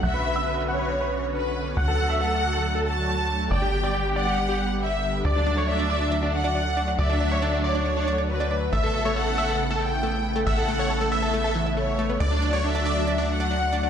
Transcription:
<<
  \new Staff \with { instrumentName = "Grand piano" } { \time 4/4 \key d \major \tempo 4 = 138 fis'''16 b''16 b''16 e'''16 b''16 b''16 fis'''16 b''16 r16 b''16 r4. | fis'''16 a''16 a''16 e'''16 a''16 a''16 fis'''16 a''16 r16 a''16 r4. | d'''16 g''16 g''16 d'''16 g''16 g''16 d'''16 g''16 r16 g''16 r4. | d'''16 d''16 d''16 cis'''16 d''16 d''16 d'''16 d''16 r16 d''16 r4. |
d'''16 d''16 d''16 cis'''16 d''16 r16 d'''16 d''16 r16 d''16 r4. | e'''16 a''16 a''16 cis'''16 a''16 a''16 e'''16 a''16 r16 a''16 r4. | e'''16 a''16 a''16 cis'''16 a''16 a''16 e'''16 a''16 r16 a''16 r4. | d'''16 d''16 d''16 cis'''16 d''16 d''16 d'''16 d''16 r16 d''16 r4. | }
  \new Staff \with { instrumentName = "Violin section" } { \time 4/4 \key d \major e''4. cis''4. b'4 | fis''4 fis''4. a''4. | g''4. fis''4. e''4 | d''4 e''4. fis''4. |
e''4. cis''4. b'4 | e''4 fis''4. g''4. | fis''4. e''4. cis''4 | d''4 e''4. fis''4. | }
  \new Staff \with { instrumentName = "Supersaw synth" } { \time 4/4 \key d \major fis''16 b'16 b'16 e''16 b'16 b'16 fis''16 b'16 r16 b'16 r4. | fis''16 a'16 a'16 e''16 a'16 a'16 fis''16 a'16 r16 a'16 r4. | d''16 g'16 g'16 d''16 g'16 g'16 d''16 g'16 r16 g'16 r4. | d''16 d'16 d'16 cis''16 d'16 d'16 d''16 d'16 r16 d'16 r4. |
d''16 d'16 d'16 cis''16 d'16 d'16 d''16 d'16 r16 d'16 r4. | e''16 a'16 a'16 cis''16 a'16 a'16 e''16 a'16 r16 a'16 r4. | e''16 a'16 a'16 cis''16 a'16 a'16 e''16 a'16 r16 a'16 r4. | d''16 d'16 d'16 cis''16 d'16 d'16 d''16 d'16 r16 d'16 r4. | }
  \new Staff \with { instrumentName = "Synth pluck" } { \time 4/4 \key d \major r1 | r1 | r1 | d'16 r16 d'16 d'16 r16 d'16 d'16 r16 d'16 d'16 r16 d'16 d'16 r16 d'16 d'16 |
r16 d'16 d'16 r16 d'16 d'16 r16 d'16 d'16 r16 d'16 d'16 r16 d'16 d'16 r16 | a16 a16 r16 a16 a16 r16 a16 a16 r16 a16 a16 r16 a16 a16 r16 a16 | a16 r16 a16 a16 r16 a16 a16 r16 a16 a16 e16 e'16 a16 r16 a16 b16 | d'16 r16 d'16 d'16 r16 d'16 d'16 r16 d'16 d'16 r16 d'16 d'16 r16 d'16 d'16 | }
  \new Staff \with { instrumentName = "Analog synth pad" } { \time 4/4 \key d \major <d b cis' fis'>8 <d b cis' fis'>8 <d b cis' fis'>16 <d b cis' fis'>16 <d b cis' fis'>16 <d b cis' fis'>8 r16 <d b cis' fis'>16 <d b cis' fis'>8 r16 <d b cis' fis'>8 | <d fis a fis'>8 <d fis a fis'>8 <d fis a fis'>16 <d fis a fis'>16 <d fis a fis'>16 <d fis a fis'>8 r16 <d fis a fis'>16 <d fis a fis'>8 r16 <d fis a fis'>8 | <d g b g'>8 <d g b g'>8 <d g b g'>16 <d g b g'>16 <d g b g'>16 <d g b g'>8 r16 <d g b g'>16 <d g b g'>8 r16 <d g b g'>8 | <d fis a fis'>8 <d fis a fis'>8 <d fis a fis'>16 <d fis a fis'>16 <d fis a fis'>16 <d fis a fis'>8 r16 <d fis a fis'>16 <d fis a fis'>8 r16 <d fis a fis'>8 |
<d fis a fis'>8 <d fis a fis'>8 <d fis a fis'>16 <d fis a fis'>16 <d fis a fis'>16 <d fis a fis'>8 r16 <d fis a fis'>16 <d fis a fis'>8 r16 <d fis a fis'>8 | <cis a b e'>8 <cis a b e'>8 <cis a b e'>16 <cis a b e'>16 <cis a b e'>16 <cis a b e'>8 r16 <cis a b e'>16 <cis a b e'>8 r16 <cis a b e'>8 | <cis a b e'>8 <cis a b e'>8 <cis a b e'>16 <cis a b e'>16 <cis a b e'>16 <cis a b e'>8 r16 <cis a b e'>16 <cis a b e'>8 r16 <cis a b e'>8 | <d fis a fis'>8 <d fis a fis'>8 <d fis a fis'>16 <d fis a fis'>16 <d fis a fis'>16 <d fis a fis'>8 r16 <d fis a fis'>16 <d fis a fis'>8 r16 <d fis a fis'>8 | }
  \new Staff \with { instrumentName = "Analog synth bass" } { \clef bass \time 4/4 \key d \major b,,1 | d,1 | g,,1 | d,1 |
d,1 | a,,1 | a,,1 | d,1 | }
>>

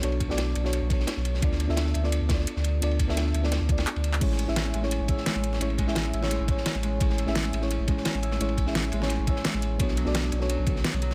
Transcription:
<<
  \new Staff \with { instrumentName = "FM electric piano" } { \time 4/4 \key a \major \tempo 4 = 172 <b d' fis' a' cis''>8. <b d' fis' a' d''>4 <b d' fis' a' cis''>8. <b d' fis' a' cis''>4. | <b d' f' a' d''>8. <b d' f' a' e''>4 <b d' f' a' d''>8. <b d' f' a' d''>4. | <b d' f' a' d''>8. <b d' f' a' e''>4 <b d' f' a' d''>8. <b d' f' a' d''>4. | <a cis' e' gis' cis''>8. <cis' e' gis' e''>4 <a cis' e' gis' cis''>8. <cis' e' gis' cis''>4. |
<a cis' e' gis' cis''>8. <cis' e' gis' e''>4 <a cis' e' gis' cis''>8. <cis' e' gis' cis''>4. | <a cis' e' gis' cis''>8. <a cis' e' gis' e''>4 <a cis' e' gis' cis''>8. <cis' e' gis' cis''>4. | <a cis' e' gis' cis''>8. <cis' e' gis' e''>4 <a cis' e' gis' cis''>8. <cis' e' gis' cis''>4. | <b d' fis' a' cis''>8. <b d' fis' a' d''>4 <b d' fis' a' cis''>8. <d b fis' a' cis''>4. | }
  \new Staff \with { instrumentName = "Harp" } { \clef bass \time 4/4 \key a \major r1 | r1 | r1 | gis8 r8 cis'8 gis8 r8 e'8 gis8 r8 |
cis'8 gis8 r8 e'8 gis8 r8 cis'8 gis8 | r8 e'8 gis8 r8 cis'8 gis8 r8 e'8 | gis8 r8 cis'8 gis8 r8 e'8 gis8 r8 | b8 fis8 r8 cis'8 fis8 r8 b8 fis8 | }
  \new Staff \with { instrumentName = "Sub bass" } { \clef bass \time 4/4 \key a \major b,,8. b,,8. b,,8. b,,8. r16 b,,8. | d,8. d,8. d,8. d,8. r16 d,8. | d,8. d,8. d,8. d,8. r16 d,8. | a,,8. a,,8. a,,8. a,,8. r16 a,,8. |
a,,8. a,,8. a,,8. a,,8. r16 a,,8. | a,,8. a,,8. a,,8. a,,8. r16 a,,8. | a,,8. a,,8. a,,8. a,,8. r16 a,,8. | b,,8. b,,8. b,,8. b,,8. r16 b,,8. | }
  \new DrumStaff \with { instrumentName = "Drums" } \drummode { \time 4/4 <hh cymr>16 cymr16 <hh bd cymr>16 sn16 <hh cymr sn>8 <hh cymr>16 sn16 <hh cymr>8 <hh bd cymr>16 sn16 <hh cymr sn>8 <hh cymr>16 sn16 | <hh bd cymr>16 sn16 <hh cymr>16 sn16 <hh cymr sn>16 sn16 <hh cymr>16 sn16 <hh cymr>8 <hh bd cymr sn>16 sn16 <hh cymr>16 sn16 <hh cymr>8 | <hh cymr>16 cymr16 <hh bd cymr>16 sn16 <hh cymr sn>8 <hh cymr>16 sn16 <hh cymr sn>8 <hh bd cymr>16 <cymr sn>16 <hc hh>16 cymr16 <hh cymr>16 hc16 | <cymc hh bd cymr>16 sn16 <hh cymr>16 sn16 <hh cymr sn>16 sn16 <hh cymr>16 sn16 <hh cymr>8 <hh bd cymr>16 sn16 <hh cymr sn>16 sn16 <hh cymr>16 sn16 |
<hh cymr>16 cymr16 <hh bd cymr>16 sn16 <hh cymr sn>16 sn16 <hh cymr>16 sn16 <hh cymr>8 <hh bd cymr>16 sn16 <hh cymr sn>16 sn16 <hh cymr>8 | <hh bd cymr>16 sn16 <hh cymr>16 sn16 <hh cymr sn>16 sn16 <hh cymr>16 sn16 <hh cymr>8 <hh bd cymr>16 sn16 <hh cymr sn>16 sn16 <hh cymr>16 sn16 | <hh cymr>16 cymr16 <hh bd cymr>16 sn16 <hh cymr sn>16 sn16 <hh cymr>16 sn16 <hh cymr>8 <hh bd cymr>16 sn16 <hh cymr sn>16 sn16 <hh cymr>8 | <hh bd cymr>16 sn16 <hh cymr>16 sn16 <hh cymr sn>16 sn16 <hh cymr>16 sn16 <hh cymr>8 <hh bd cymr>16 sn16 <hh cymr sn>16 sn16 <hh cymr>16 sn16 | }
>>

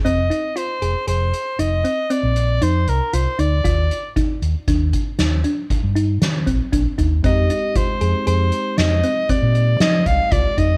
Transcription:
<<
  \new Staff \with { instrumentName = "Soprano saxophone" } { \time 7/4 \key f \dorian \tempo 4 = 117 ees''4 c''4 c''4 ees''4 d''4 c''8 bes'8 c''8 d''8~ | d''4 r1. | ees''4 c''4 c''4 ees''4 d''4 ees''8 f''8 d''8 ees''8 | }
  \new Staff \with { instrumentName = "Synth arpeggio sound" } { \time 7/4 \key f \dorian c'8 ees'8 f'8 aes'8 aes'4 ees'8 c'8 c'4 ees'4 f'8 ees'8 | f'4 ees'4 d'4 ees'8 d'4 ees'4 c'8 d'8 ees'8 | c'8 ees'8 f'8 aes'8 aes'4 ees'8 c'8 c'4 ees'4 f'8 ees'8 | }
  \new Staff \with { instrumentName = "Tine electric piano" } { \time 7/4 \key f \dorian r1. r4 | r1. r4 | <aes c' ees' g'>1.~ <aes c' ees' g'>4 | }
  \new Staff \with { instrumentName = "Fingered electric bass" } { \clef bass \time 7/4 \key f \dorian f,,8 r4 f,,16 r16 f,,8 r8 f,,8 r8. bes,,8. f,8 c,16 r16 c,16 r16 d,8 | ees,8 r4 ees,16 r16 ees,8 r8 ees,8 r8. g,8. ees8 bes,,16 r16 bes,,16 r16 ees,8 | f,8 r4 f,16 r16 f,8 r8 f,8 r8. bes,8. f8 c,16 r16 c,16 r16 f,8 | }
  \new DrumStaff \with { instrumentName = "Drums" } \drummode { \time 7/4 hh8 hh8 hh8 hh8 hh8 hh8 hh8 hh8 hh8 hh8 hh8 hh8 hh8 hh8 | <hh bd>8 hh8 <hh bd>8 hh8 <hh bd sn>8 <hh bd>8 <hh sn>8 hh8 <hh bd>8 hh8 <hh sn>8 <hh bd>8 <hh bd>8 <hh bd>8 | <hh bd>8 hh8 <hh bd>8 hh8 hh8 hh8 <hh sn>8 hh8 <hh bd>8 hh8 <hh sn>8 <hh bd>8 <hh bd>8 <hh bd>8 | }
>>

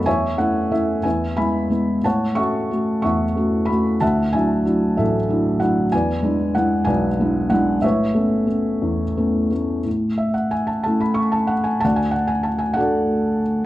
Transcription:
<<
  \new Staff \with { instrumentName = "Felt piano" } { \time 6/8 \key a \major \tempo 4. = 61 << { gis''8 fis''8 e''8 gis''8 b''4 | a''8 cis'''4 cis'''4 b''8 | a''8 gis''4 e''4 fis''8 | gis''4 fis''8 gis''4 fis''8 |
e''2~ e''8 r8 | r8 e''16 fis''16 gis''16 a''16 a''16 b''16 cis'''16 a''16 fis''16 gis''16 | a''16 gis''16 fis''16 gis''16 a''16 gis''16 fis''4 r8 | } \\ { <cis'' e''>4. <b' e''>8 <e'' gis''>4 | <cis'' fis''>8 <e'' fis''>4 <e'' fis''>4. | <e'' fis''>8 e''4 a'4. | <b' d''>4. <b' d''>4. |
<b' cis''>2~ <b' cis''>8 r8 | r2. | <d'' fis''>4. <a' d''>4. | } >> }
  \new Staff \with { instrumentName = "Felt piano" } { \time 6/8 \key a \major e,8 <a cis' e'>8 <a cis' e'>8 e,8 <gis b e'>8 <gis b e'>8 | a,8 <a cis' fis'>8 <a cis' fis'>8 e,8 <a cis' fis'>8 <a cis' fis'>8 | d,8 <fis d' e'>8 <fis d' e'>8 a,,8 <fis d' e'>8 <fis d' e'>8 | e,8 <gis d' e'>8 <gis d' e'>8 b,,8 <gis d' e'>8 <gis d' e'>8 |
a,8 <a b cis'>8 <a b cis'>8 e,8 <a b cis'>8 <a b cis'>8 | a,4. <a cis' e'>4. | d,4. <a d' fis'>4. | }
>>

